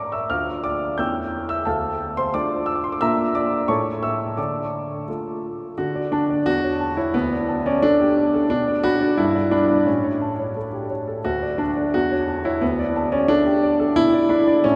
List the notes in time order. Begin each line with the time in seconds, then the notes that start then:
Already playing: D5 D6
0.12 E5 E6
0.30 D2 A3 D4 F4 F5 D6 F6
0.64 D5 D6
0.98 E2 A3 C#4 E4 G5 E6 G6
1.49 E5 E6
1.65 D2 A4 F5 A5
2.17 C5 C6
2.34 A3 D4 F4 D5 A5 D6
2.66 E6
2.75 D6
2.84 C6
2.92 D6
3.01 A#2 A#3 D4 F4 E5 A#5 E6
3.35 D5 D6
3.68 A2 A3 E4 A4 C#5 A5 C#6
4.03 E5 E6
4.37 D3 D5 A5 D6
5.08 A3 F4 A4
5.78 D3 F#4
5.96 D5
6.12 D4 A5
6.30 D5
6.46 E2 F#4
6.64 C#5
6.81 A5
6.97 E4 C#5
7.14 D2 B3
7.32 D5
7.49 A5
7.66 C#4 D5
7.82 D4 A4
8.00 G4
8.18 D5
8.34 A4
8.50 B2 D4
8.68 D5
8.83 F#4 B5
9.01 D5
9.18 G2 E4
9.35 D5
9.51 D4 B5
9.69 D5
9.86 A2 C#4
10.04 C#5
10.22 A5
10.39 C#5
10.56 A4
10.73 G4
10.90 C#5
11.08 A4
11.24 D2 F#4
11.42 D5
11.58 D4 A5
11.77 D5
11.94 E2 F#4
12.11 C#5
12.28 A5
12.45 E4 C#5
12.61 D2 B3
12.79 D5
12.96 A5
13.12 C#4 D5
13.28 D4 A4
13.46 G4
13.63 D5
13.80 A4
13.96 B2 E4
14.14 D5
14.29 D4 B5
14.47 D5
14.64 A2 C#4